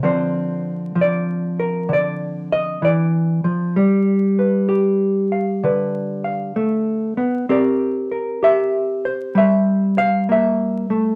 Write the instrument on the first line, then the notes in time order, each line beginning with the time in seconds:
hollow-body jazz guitar
0.03 D3 F3 C4 C5
0.95 F3
1.01 D5
1.59 A#4
1.89 D3
1.93 D5
2.52 D#5
2.82 E3 D5
3.44 F3
3.76 G3
4.39 B4
4.69 G4
5.32 F5
5.63 D3 B4
6.24 F5
6.56 A3
7.17 B3
7.49 C4 G4 A#4 D5
8.12 A#4
8.43 G4 E5
9.05 C5
9.35 G3 E5
9.98 F5
10.29 A#3 E5
10.90 A3